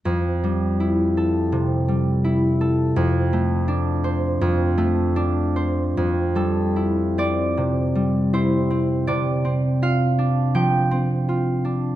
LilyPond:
\new Staff \with { instrumentName = "Harp" } { \time 4/4 \key f \major \tempo 4 = 81 << { r1 | r1 | r8 a'4 d''4. c''4 | d''4 f''4 g''2 | } \\ { f,8 g8 e'8 a'8 c8 g8 e'8 a'8 | f,8 a8 d'8 c''8 f,8 a8 d'8 c''8 | f,8 g8 e'8 c'8 c8 g8 e'8 c'8 | c8 c'8 f'8 d'8 f8 c'8 f'8 d'8 | } >> }